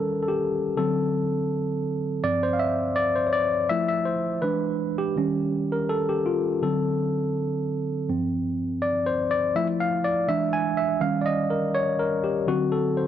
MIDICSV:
0, 0, Header, 1, 2, 480
1, 0, Start_track
1, 0, Tempo, 731707
1, 499, Time_signature, 4, 2, 24, 8
1, 8576, End_track
2, 0, Start_track
2, 0, Title_t, "Tine electric piano"
2, 0, Program_c, 0, 4
2, 0, Control_c, 0, 64, 127
2, 0, Note_on_c, 0, 51, 46
2, 0, Note_on_c, 0, 55, 43
2, 0, Note_on_c, 0, 61, 52
2, 0, Note_on_c, 0, 69, 78
2, 0, Note_on_c, 0, 70, 77
2, 125, Note_off_c, 0, 69, 0
2, 149, Note_on_c, 0, 69, 55
2, 182, Note_off_c, 0, 69, 0
2, 186, Note_on_c, 0, 67, 86
2, 475, Note_off_c, 0, 51, 0
2, 478, Note_off_c, 0, 55, 0
2, 480, Note_off_c, 0, 61, 0
2, 505, Note_on_c, 0, 50, 59
2, 508, Control_c, 0, 64, 0
2, 508, Note_on_c, 0, 69, 77
2, 509, Note_on_c, 0, 54, 56
2, 510, Note_off_c, 0, 70, 0
2, 511, Note_off_c, 0, 67, 0
2, 511, Note_on_c, 0, 60, 63
2, 615, Control_c, 0, 64, 127
2, 726, Note_off_c, 0, 69, 0
2, 1435, Note_off_c, 0, 50, 0
2, 1437, Note_off_c, 0, 54, 0
2, 1439, Note_off_c, 0, 60, 0
2, 1465, Note_on_c, 0, 43, 45
2, 1466, Control_c, 0, 64, 0
2, 1467, Note_on_c, 0, 74, 94
2, 1469, Note_on_c, 0, 53, 40
2, 1471, Note_on_c, 0, 60, 50
2, 1577, Control_c, 0, 64, 127
2, 1584, Note_off_c, 0, 74, 0
2, 1595, Note_on_c, 0, 72, 84
2, 1661, Note_off_c, 0, 72, 0
2, 1661, Note_on_c, 0, 77, 68
2, 1701, Note_off_c, 0, 77, 0
2, 1701, Note_on_c, 0, 76, 92
2, 1923, Note_off_c, 0, 76, 0
2, 1940, Note_on_c, 0, 74, 96
2, 2060, Note_off_c, 0, 74, 0
2, 2070, Note_on_c, 0, 72, 80
2, 2139, Note_off_c, 0, 72, 0
2, 2144, Note_on_c, 0, 73, 61
2, 2182, Note_off_c, 0, 73, 0
2, 2182, Note_on_c, 0, 74, 90
2, 2395, Note_off_c, 0, 43, 0
2, 2397, Note_off_c, 0, 53, 0
2, 2398, Note_off_c, 0, 60, 0
2, 2404, Note_off_c, 0, 74, 0
2, 2424, Note_on_c, 0, 76, 110
2, 2425, Note_on_c, 0, 53, 56
2, 2426, Control_c, 0, 64, 0
2, 2429, Note_on_c, 0, 57, 54
2, 2433, Note_on_c, 0, 64, 58
2, 2541, Note_off_c, 0, 76, 0
2, 2548, Control_c, 0, 64, 127
2, 2549, Note_on_c, 0, 76, 82
2, 2659, Note_on_c, 0, 72, 79
2, 2662, Note_off_c, 0, 76, 0
2, 2767, Note_off_c, 0, 72, 0
2, 2878, Note_off_c, 0, 53, 0
2, 2880, Note_off_c, 0, 57, 0
2, 2882, Note_off_c, 0, 64, 0
2, 2899, Note_on_c, 0, 71, 79
2, 2901, Note_on_c, 0, 52, 47
2, 2906, Control_c, 0, 64, 0
2, 2906, Note_on_c, 0, 56, 43
2, 2911, Note_on_c, 0, 62, 54
2, 3035, Control_c, 0, 64, 127
2, 3226, Note_off_c, 0, 52, 0
2, 3229, Note_off_c, 0, 56, 0
2, 3231, Note_off_c, 0, 62, 0
2, 3268, Note_on_c, 0, 67, 94
2, 3279, Note_off_c, 0, 71, 0
2, 3388, Control_c, 0, 64, 0
2, 3388, Note_on_c, 0, 51, 53
2, 3390, Note_on_c, 0, 55, 41
2, 3396, Note_on_c, 0, 61, 57
2, 3503, Control_c, 0, 64, 127
2, 3754, Note_on_c, 0, 70, 80
2, 3762, Note_off_c, 0, 67, 0
2, 3864, Note_off_c, 0, 70, 0
2, 3866, Note_on_c, 0, 69, 86
2, 3995, Note_on_c, 0, 67, 83
2, 3996, Note_off_c, 0, 69, 0
2, 4077, Note_off_c, 0, 51, 0
2, 4078, Note_off_c, 0, 55, 0
2, 4081, Note_off_c, 0, 61, 0
2, 4094, Note_off_c, 0, 67, 0
2, 4106, Note_on_c, 0, 65, 68
2, 4344, Note_on_c, 0, 50, 63
2, 4348, Control_c, 0, 64, 0
2, 4348, Note_on_c, 0, 69, 72
2, 4349, Note_off_c, 0, 65, 0
2, 4349, Note_on_c, 0, 54, 49
2, 4353, Note_on_c, 0, 60, 61
2, 4448, Control_c, 0, 64, 127
2, 4454, Note_off_c, 0, 69, 0
2, 5275, Note_off_c, 0, 50, 0
2, 5278, Note_off_c, 0, 54, 0
2, 5280, Note_off_c, 0, 60, 0
2, 5305, Note_on_c, 0, 43, 42
2, 5307, Control_c, 0, 64, 0
2, 5310, Note_on_c, 0, 53, 44
2, 5312, Note_on_c, 0, 60, 55
2, 5433, Control_c, 0, 64, 127
2, 5786, Note_on_c, 0, 74, 85
2, 5856, Note_off_c, 0, 74, 0
2, 5946, Note_on_c, 0, 72, 88
2, 6106, Note_on_c, 0, 74, 89
2, 6107, Note_off_c, 0, 72, 0
2, 6236, Note_off_c, 0, 43, 0
2, 6238, Note_off_c, 0, 53, 0
2, 6239, Note_off_c, 0, 60, 0
2, 6251, Note_off_c, 0, 74, 0
2, 6266, Control_c, 0, 64, 0
2, 6268, Note_on_c, 0, 53, 58
2, 6271, Note_on_c, 0, 76, 101
2, 6272, Note_on_c, 0, 57, 50
2, 6274, Note_on_c, 0, 64, 65
2, 6340, Note_off_c, 0, 76, 0
2, 6381, Control_c, 0, 64, 127
2, 6431, Note_on_c, 0, 77, 94
2, 6589, Note_off_c, 0, 77, 0
2, 6589, Note_on_c, 0, 74, 92
2, 6719, Note_off_c, 0, 53, 0
2, 6721, Note_off_c, 0, 57, 0
2, 6723, Note_off_c, 0, 64, 0
2, 6743, Note_on_c, 0, 52, 56
2, 6746, Control_c, 0, 64, 0
2, 6747, Note_on_c, 0, 56, 45
2, 6747, Note_on_c, 0, 76, 101
2, 6748, Note_off_c, 0, 74, 0
2, 6751, Note_on_c, 0, 62, 60
2, 6851, Control_c, 0, 64, 127
2, 6908, Note_off_c, 0, 76, 0
2, 6908, Note_on_c, 0, 80, 93
2, 7066, Note_on_c, 0, 76, 86
2, 7068, Note_off_c, 0, 80, 0
2, 7197, Note_off_c, 0, 52, 0
2, 7199, Note_off_c, 0, 56, 0
2, 7201, Note_off_c, 0, 62, 0
2, 7219, Note_on_c, 0, 51, 50
2, 7224, Note_on_c, 0, 77, 90
2, 7225, Note_on_c, 0, 55, 48
2, 7227, Note_off_c, 0, 76, 0
2, 7228, Control_c, 0, 64, 0
2, 7229, Note_on_c, 0, 61, 46
2, 7335, Control_c, 0, 64, 127
2, 7354, Note_off_c, 0, 77, 0
2, 7357, Note_on_c, 0, 74, 68
2, 7383, Note_off_c, 0, 74, 0
2, 7385, Note_on_c, 0, 75, 97
2, 7545, Note_off_c, 0, 51, 0
2, 7546, Note_off_c, 0, 75, 0
2, 7546, Note_on_c, 0, 70, 77
2, 7548, Note_off_c, 0, 55, 0
2, 7550, Note_off_c, 0, 61, 0
2, 7705, Note_on_c, 0, 73, 100
2, 7707, Note_off_c, 0, 70, 0
2, 7866, Note_off_c, 0, 73, 0
2, 7868, Note_on_c, 0, 70, 85
2, 8028, Note_off_c, 0, 70, 0
2, 8028, Note_on_c, 0, 67, 80
2, 8182, Note_on_c, 0, 50, 63
2, 8186, Note_on_c, 0, 54, 53
2, 8188, Note_off_c, 0, 67, 0
2, 8188, Control_c, 0, 64, 0
2, 8188, Note_on_c, 0, 60, 66
2, 8188, Note_on_c, 0, 66, 100
2, 8293, Control_c, 0, 64, 127
2, 8332, Note_off_c, 0, 66, 0
2, 8344, Note_on_c, 0, 69, 84
2, 8506, Note_off_c, 0, 69, 0
2, 8509, Note_on_c, 0, 72, 73
2, 8576, Note_off_c, 0, 50, 0
2, 8576, Note_off_c, 0, 54, 0
2, 8576, Note_off_c, 0, 60, 0
2, 8576, Note_off_c, 0, 72, 0
2, 8576, End_track
0, 0, End_of_file